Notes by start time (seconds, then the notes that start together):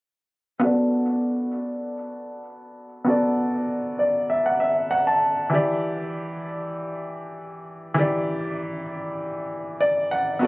0.60 B3 F#4 A4
0.65 D5
3.04 B3 F#4 A4
3.10 D5
3.99 D5
4.30 E5
4.46 F#5
4.60 E5
4.91 F#5
5.07 A5
5.50 E3 E4 G4
5.55 D5
7.94 E3 E4 G4
7.99 D5
9.81 D5
10.11 F#5
10.39 B3 F#4 A4